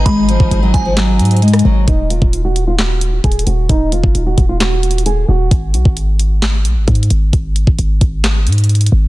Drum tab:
HH |x-----------x-----------x-----------x-----------x-----------x--x--x--x--x--x--x--x--------------|x-----------x-----------x-----------x-----------------------x-----------x---x---x---x-----------|x-----------x-----------x-----------x-----------x-----------x---x---x---x-----------------------|x-----------x-----------x-----------x-----------------------x-----------x---x---x---x-----------|
CP |------------------------------------------------x-----------------------------------------------|------------------------------------------------x-----------------------------------------------|------------------------------------------------x-----------------------------------------------|------------------------------------------------x-----------------------------------------------|
SD |------------------------------------------------o-----------------------------r-----------------|------------------------------------------------o-----------------------------------------------|------------------------------------------------o-----------------------------------------------|------------------------------------------------o-----------------------------------------------|
BD |o-----------------o-----------------o-----------------------------------------------------------|o-----------------o-----------------------------------------------------o-----------------------|o-----------------o-----------------o-----------------------------------------------------------|o-----------------o-----------------------------------------------------o-----------------------|

HH |x-----------x-----------x-----------x-----------x-----------x--x--x--x--x--x--x--x--------------|
CP |------------------------------------------------x-----------------------------------------------|
SD |------------------------------------------------o-----------------------------------------------|
BD |o-----------------o-----------------o-----------------------------------------------------------|